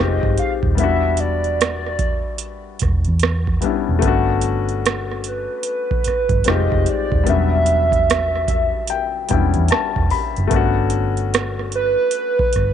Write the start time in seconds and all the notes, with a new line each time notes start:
Already playing: G#3 C4 F4
0.00 F1 D#4 G4 D#5
0.23 G1, kick
0.38 F5, closed hi-hat
0.63 D#1, kick
0.75 G3 B3, closed hi-hat
0.79 E1 D4 E4 E5
0.83 F#4
1.17 D5, closed hi-hat
1.44 closed hi-hat
1.61 cross-stick, closed hi-hat
1.86 cross-stick
1.99 kick, closed hi-hat
2.38 closed hi-hat
2.79 E1, kick, cross-stick, closed hi-hat
3.05 E2, closed hi-hat
3.20 cross-stick, closed hi-hat
3.47 kick
3.61 G3 B3 C#4 D4, muted fingered electric bass stroke, closed hi-hat
3.65 E4
3.89 E1
3.99 A3 B3, kick, closed hi-hat
4.03 G1 C#4 D4
4.08 F#4
4.42 closed hi-hat
4.69 closed hi-hat
4.86 cross-stick, closed hi-hat
5.12 cross-stick
5.24 B4, closed hi-hat
5.63 closed hi-hat
5.91 kick
6.04 muted fingered electric bass stroke, cross-stick, closed hi-hat
6.29 G1, kick, closed hi-hat
6.44 F1 G3 C4 D#4 F4, cross-stick, closed hi-hat
6.49 G#3 G4 D#5
6.72 F1, kick
6.86 D5, closed hi-hat
7.12 D#1, kick
7.23 G3 B3, closed hi-hat
7.28 E1 C#4 D4 E5
7.32 F#3
7.66 closed hi-hat
7.92 kick, closed hi-hat
8.10 cross-stick, closed hi-hat
8.36 cross-stick
8.48 E5, kick, closed hi-hat
8.87 G5, closed hi-hat
9.29 E1 G3 B3 C#4 D4 G5, kick, closed hi-hat
9.33 E4
9.54 E2, closed hi-hat
9.68 A5, muted fingered electric bass stroke, cross-stick, closed hi-hat
9.96 E1, kick
10.10 B5, open hi-hat
10.36 F#1, closed hi-hat
10.47 A3 B3, kick, closed hi-hat
10.52 G1 C#4 D4
10.56 F#4
10.90 closed hi-hat
11.17 closed hi-hat
11.34 cross-stick, closed hi-hat
11.59 cross-stick
11.72 B4, closed hi-hat
12.11 closed hi-hat
12.39 kick
12.53 G1, cross-stick, closed hi-hat